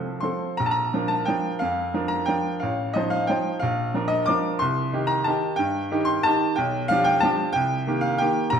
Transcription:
0.00 0.25 C2 medium
0.00 0.19 F3 soft
0.00 0.19 C4 soft
0.00 0.19 A4 soft
0.00 0.40 F5 medium
0.20 0.55 F3 soft
0.20 0.56 C4 soft
0.20 0.56 A4 soft
0.20 0.58 C6 medium
0.57 0.93 A#1 medium
0.57 0.65 A#5 medium
0.66 0.73 A5 medium
0.71 1.10 A#5 medium
0.94 1.25 F3 medium
0.94 1.25 D4 medium
0.94 1.25 A#4 medium
1.08 1.27 A5 medium
1.25 1.58 F3 medium
1.25 1.58 D4 medium
1.25 1.59 A#4 medium
1.25 1.60 G5 medium
1.59 1.93 F2 medium
1.59 2.10 F5 medium
1.94 2.25 F3 medium
1.94 2.25 D4 medium
1.94 2.25 A#4 medium
2.08 2.27 A#5 medium
2.26 2.59 F3 soft
2.26 2.59 D4 medium
2.26 2.59 A#4 medium
2.26 2.61 G5 medium
2.60 2.94 A1 medium
2.60 2.94 F5 medium
2.94 3.26 F3 medium
2.94 3.26 D#4 medium
2.94 3.27 C5 medium
2.94 3.11 D#5 medium
3.10 3.28 F5 medium
3.27 3.59 F3 medium
3.27 3.60 D#4 soft
3.27 3.60 C5 medium
3.27 3.62 G5 medium
3.59 3.94 A#1 medium
3.59 4.09 F5 medium
3.94 4.24 F3 medium
3.94 4.24 D4 medium
3.94 4.25 A#4 medium
4.08 4.26 D#5 loud
4.26 4.58 F3 medium
4.26 4.58 D4 medium
4.26 4.58 A#4 medium
4.26 4.60 D6 loud
4.59 4.92 C2 medium
4.59 5.08 C6 loud
4.93 5.23 D#3 medium
4.93 5.23 D#4 medium
4.93 5.24 G4 medium
5.07 5.25 A#5 loud
5.24 5.56 D#3 medium
5.24 5.56 D#4 medium
5.24 5.56 G4 medium
5.24 5.58 A5 loud
5.56 5.90 G2 medium
5.56 6.07 G5 loud
5.91 6.22 D#3 medium
5.91 6.22 D#4 medium
5.91 6.22 G4 medium
6.05 6.24 C6 loud
6.23 6.55 D#3 medium
6.23 6.55 D#4 medium
6.23 6.56 G4 medium
6.23 6.57 A5 loud
6.56 6.90 B1 medium
6.56 6.89 G5 medium
6.88 7.20 F3 medium
6.88 7.21 D4 medium
6.88 7.21 G4 medium
6.88 7.06 F5 loud
7.04 7.22 G5 loud
7.20 7.52 F3 medium
7.20 7.53 D4 medium
7.20 7.53 G4 medium
7.20 7.54 A5 loud
7.53 7.86 C2 medium
7.53 8.02 G5 loud
7.87 8.17 D#3 medium
7.87 8.17 A#3 medium
7.87 8.17 G4 medium
8.01 8.19 F5 loud
8.18 8.50 D#3 medium
8.18 8.50 A#3 medium
8.18 8.50 G4 medium
8.18 8.52 G5 loud
8.50 8.60 A#1 medium
8.50 8.60 A#5 loud

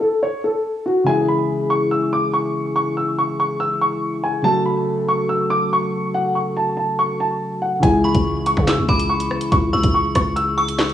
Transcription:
0.01 0.19 A4 medium
0.23 0.40 C#5 medium
0.44 0.84 A4 medium
0.86 1.04 F#4 medium
1.04 4.40 C#3 medium
1.04 4.40 E3 medium
1.04 4.41 G#3 medium
1.04 4.42 E4 medium
1.04 1.25 G#5 loud
1.09 4.42 G#4 medium
1.28 1.68 B5 medium
1.70 1.88 C#6 medium
1.91 2.09 E6 medium
2.13 2.31 D6 medium
2.33 2.73 C#6 medium
2.76 2.94 C#6 medium
2.97 3.15 E6 medium
3.18 3.36 C#6 medium
3.40 3.57 C#6 medium
3.60 3.78 E6 medium
3.81 4.21 C#6 medium
4.24 4.42 G#5 medium
4.42 7.78 C#3 medium
4.42 7.78 F#3 medium
4.42 7.79 A3 medium
4.42 7.80 F#4 medium
4.42 4.62 A5 loud
4.48 7.80 A4 medium
4.66 5.06 B5 medium
5.09 5.26 C#6 medium
5.29 5.47 E6 medium
5.50 5.68 D6 medium
5.73 6.12 C#6 medium
6.14 6.32 F#5 medium
6.35 6.53 C#6 medium
6.57 6.74 A5 medium
6.77 6.95 A5 medium
6.99 7.17 C#6 medium
7.20 7.60 A5 medium
7.62 7.80 F#5 medium
7.80 8.13 C#2 loud
7.80 10.94 C#3 medium
7.80 10.94 E3 medium
7.80 10.94 G#3 medium
7.80 10.94 E4 medium
7.80 8.01 G#5 loud
7.80 kick loud
7.80 closed hi-hat medium
7.85 10.94 G#4 medium
8.04 8.44 B5 medium
8.04 8.85 C#6 medium
8.14 8.55 C#2 loud
8.14 kick loud
8.14 closed hi-hat medium
8.46 8.64 C#6 medium
8.46 closed hi-hat medium
8.57 8.80 C#3 loud
8.57 kick loud
8.67 8.85 E6 medium
8.67 snare loud
8.67 clap loud
8.67 closed hi-hat medium
8.78 8.88 D2 loud
8.89 9.29 C#2 loud
8.89 9.48 B5 medium
8.89 9.07 D6 medium
8.89 kick loud
8.99 closed hi-hat medium
9.09 9.49 C#6 medium
9.20 closed hi-hat medium
9.31 cross-stick medium
9.41 closed hi-hat medium
9.52 9.72 C#2 loud
9.52 9.70 C#6 medium
9.52 kick loud
9.52 closed hi-hat medium
9.73 9.83 C#2 loud
9.73 10.54 C#6 medium
9.73 9.91 E6 medium
9.83 10.14 C#2 loud
9.83 kick loud
9.83 closed hi-hat medium
9.94 10.12 C#6 medium
10.15 10.94 C#2 loud
10.15 10.33 C#6 medium
10.15 kick medium
10.15 cross-stick loud
10.15 closed hi-hat medium
10.36 10.54 E6 medium
10.36 closed hi-hat medium
10.58 10.94 C#6 medium
10.58 10.94 E6 medium
10.68 closed hi-hat medium
10.79 snare loud
10.79 clap loud
10.89 closed hi-hat soft

